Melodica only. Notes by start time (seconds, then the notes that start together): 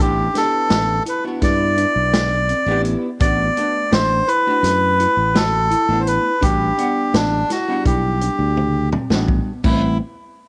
0.01 G4
0.37 A4
1.09 B4
1.43 D5
3.21 D5
3.93 C5
4.28 B4
5.36 A4
6.00 C5
6.08 B4
6.43 G4
7.15 D4
7.51 F#4
7.87 G4
9.64 E4